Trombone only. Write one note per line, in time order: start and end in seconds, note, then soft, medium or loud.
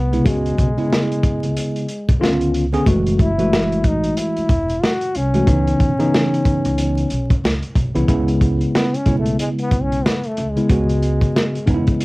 0.00 0.29 B3 medium
0.28 2.23 G#3 medium
3.21 3.88 E4 loud
3.87 4.20 D#4 medium
4.19 4.85 E4 medium
4.83 5.18 F#4 loud
5.17 7.44 C#4 medium
8.76 8.98 B3 medium
8.97 9.18 C#4 medium
9.19 9.39 A3 medium
9.40 9.50 G#3 medium
9.61 9.84 B3 loud
9.83 10.06 C#4 medium
10.05 10.29 B3 medium
10.27 10.52 A3 medium
10.50 12.05 G#3 medium